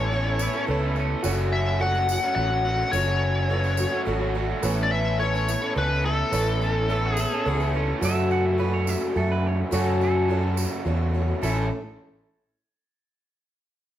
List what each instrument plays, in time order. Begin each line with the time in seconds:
Already playing: fingered electric bass A1, overdriven electric guitar A2 E3 A3 C#4 A4, twelve-string acoustic guitar B3 C#4 E4, tonewheel organ B3 C#4 E4 A4, lead electric guitar C#5
0.12 overdriven electric guitar A2 E3 A3 C#4 A4, twelve-string acoustic guitar B3 E4, upright piano A4 B4 C#5
0.26 overdriven electric guitar A3 C#4 A4
0.39 clean electric guitar E4, muted overdriven electric guitar stroke, tambourine
0.54 overdriven electric guitar A3 C#4 A4, clean electric guitar C#4
0.67 fingered electric bass C#2, overdriven electric guitar E3 A3 C#4 A4, twelve-string acoustic guitar B3 E4, clean electric guitar E4, upright piano A4 B4 C#5
0.82 overdriven electric guitar A3 C#4 A4
0.96 overdriven electric guitar E3 A3 C#4 A4, clean electric guitar C#4, tambourine
1.23 fingered electric bass F#1, overdriven electric guitar F#2 C#3 F#3 A3 C#4 F#4, tonewheel organ A3 C#4 F#4 A4, upright piano F#4 A4 C#5, tambourine
1.52 overdriven electric guitar F#3 A3 C#4 F#4, lead electric guitar E5
1.79 overdriven electric guitar F#2 C#3 F#3 A3 C#4, upright piano F#4 A4 C#5, lead electric guitar F#5
1.83 overdriven electric guitar F#4
1.94 overdriven electric guitar F#3 A3 C#4 F#4, tambourine
2.08 twelve-string acoustic guitar F#3 A3 C#4 F#4, muted overdriven electric guitar stroke, tambourine
2.22 overdriven electric guitar F#3 A3 C#4 F#4
2.35 fingered electric bass A1, overdriven electric guitar F#3 A3 C#4 F#4, upright piano F#4 A4 C#5, lead electric guitar F#5
2.50 overdriven electric guitar F#3 A3 C#4 F#4
2.64 overdriven electric guitar F#3 A3 C#4 F#4
2.91 fingered electric bass F#1, overdriven electric guitar F#2 C#3 F#3 A3 C#4, upright piano F#4 A4 C#5, lead electric guitar C#5, tambourine
2.96 overdriven electric guitar F#4
3.21 overdriven electric guitar F#3 A3 C#4 F#4
3.50 overdriven electric guitar F#2 C#3 F#3 A3 C#4 F#4, upright piano F#4 A4 B4
3.64 overdriven electric guitar F#3 A3 C#4 F#4, tambourine
3.77 twelve-string acoustic guitar F#3 A3 C#4 F#4, muted overdriven electric guitar stroke, tambourine
3.92 overdriven electric guitar F#3 A3 C#4 F#4
4.06 fingered electric bass G#1, overdriven electric guitar F#3 A3 C#4 F#4, upright piano F#4 A4 C#5
4.20 overdriven electric guitar F#3 A3 C#4 F#4
4.35 overdriven electric guitar F#3 A3 C#4 F#4
4.62 fingered electric bass A1, overdriven electric guitar A2 E3 A3 C#4 A4, tonewheel organ B3 C#4 E4 A4, twelve-string acoustic guitar B3 E4, upright piano A4 B4 C#5, tambourine
4.83 lead electric guitar D5
4.91 overdriven electric guitar E3 A3 C#4 A4, lead electric guitar E5
5.18 overdriven electric guitar A2 E3 A3 C#4 A4, twelve-string acoustic guitar B3 E4, upright piano A4 B4 C#5, lead electric guitar C#5
5.33 overdriven electric guitar A3 C#4 A4, tambourine
5.48 twelve-string acoustic guitar B3 C#4 E4, muted overdriven electric guitar stroke, tambourine
5.62 overdriven electric guitar A3 C#4 A4
5.75 fingered electric bass C#2, overdriven electric guitar E3 A3 C#4 A4, twelve-string acoustic guitar B3 E4, upright piano A4 B4 C#5, lead electric guitar B4
5.89 overdriven electric guitar A3 C#4 A4
6.04 overdriven electric guitar E3 A3 C#4 A4, twelve-string acoustic guitar B3 E4, lead electric guitar A4
6.31 fingered electric bass A1, overdriven electric guitar A2 E3 A3 C#4, twelve-string acoustic guitar B3 E4, upright piano A4 B4 C#5, tambourine
6.35 overdriven electric guitar A4
6.61 overdriven electric guitar E3 A3 C#4 A4, tambourine
6.87 overdriven electric guitar A2 E3, twelve-string acoustic guitar B3, upright piano A4 B4 C#5, tambourine
6.91 overdriven electric guitar A3 C#4 A4, twelve-string acoustic guitar E4, clean electric guitar A4
7.03 overdriven electric guitar A3 C#4 A4, clean electric guitar F#4
7.12 lead electric guitar G#4
7.17 twelve-string acoustic guitar B3 C#4 E4, clean electric guitar A4, muted overdriven electric guitar stroke, tambourine
7.32 overdriven electric guitar A3 C#4 A4, clean electric guitar A4
7.44 fingered electric bass C#2, overdriven electric guitar E3 A3, twelve-string acoustic guitar B3 E4, clean electric guitar F#4, upright piano A4 B4 C#5
7.48 overdriven electric guitar C#4 A4
7.60 overdriven electric guitar A3 C#4 A4, tambourine
7.72 overdriven electric guitar E3 A3, tonewheel organ G3 A3, twelve-string acoustic guitar B3 E4, clean electric guitar C#4
7.76 tonewheel organ B3, overdriven electric guitar C#4 A4
7.81 tonewheel organ C4 D4
7.87 tonewheel organ E4 F4
7.93 tonewheel organ G4 A4
7.99 fingered electric bass F#2, overdriven electric guitar F#2 C#3, upright piano F#4 A4, tonewheel organ B4 C5, tambourine
8.03 overdriven electric guitar F#3 A3 C#4 A4, tonewheel organ A3 C#4 F#4 A4, twelve-string acoustic guitar F#4, upright piano C#5, clean electric guitar E5
8.31 clean electric guitar F#5, tambourine
8.46 clean electric guitar E5
8.58 twelve-string acoustic guitar F#3 A3 C#4 F#4, upright piano F#4 A4 C#5, clean electric guitar B4
8.74 clean electric guitar C#5
8.87 clean electric guitar E5, tambourine
9.03 clean electric guitar C#5
9.14 fingered electric bass F#2, twelve-string acoustic guitar F#3 A3 C#4 F#4, upright piano F#4 A4 E5, clean electric guitar A4
9.32 clean electric guitar B4
9.47 clean electric guitar C#5
9.61 clean electric guitar B4
9.71 overdriven electric guitar F#2 C#3 F#3 A3 C#4, fingered electric bass F#2, upright piano F#4 A4 C#5, twelve-string acoustic guitar F#4, clean electric guitar F#4, tambourine
9.76 overdriven electric guitar A4
9.89 clean electric guitar A4
10.01 clean electric guitar A4, tambourine
10.28 twelve-string acoustic guitar F#3 A3 C#4 F#4, upright piano F#4 A4 C#5
10.57 twelve-string acoustic guitar F#3 A3 C#4 F#4, tambourine
10.85 fingered electric bass E2, twelve-string acoustic guitar F#3 A3 C#4 F#4, upright piano F#4 A4 C#5
11.14 twelve-string acoustic guitar F#3 A3 C#4 F#4
11.42 fingered electric bass A1, overdriven electric guitar A2 E3 A3 C#4 E4, tonewheel organ A3 C#4 E4 A4, upright piano E4 A4 C#5, clean electric guitar A4, tambourine